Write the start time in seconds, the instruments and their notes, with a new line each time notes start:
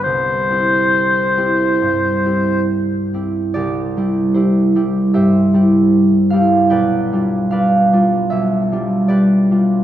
Already playing: harp G4
0.04 harp C2, oboe C5
0.50 harp C4 E4 G4
1.37 harp C4 E4 G4
1.82 harp G2
2.26 harp C4 E4 G4
3.14 harp C4 E4 G4
3.54 harp C2 G4 D5
3.97 harp G3 E4 G4
4.34 harp E4 G4 C5
4.75 harp G3 E4 G4
5.14 harp G2 G4 C5 E5
5.54 harp G3 E4 G4
6.30 harp G3 E4 G4 F5
6.70 harp B1 B4 D5 G5
7.13 harp G3 D4 F4
7.51 harp B4 D5 F5
7.93 harp G3 D4 F4
8.30 harp B1 E5
8.72 harp G3 D4 F4
9.08 harp G4 B4 D5
9.51 harp G3 D4 F4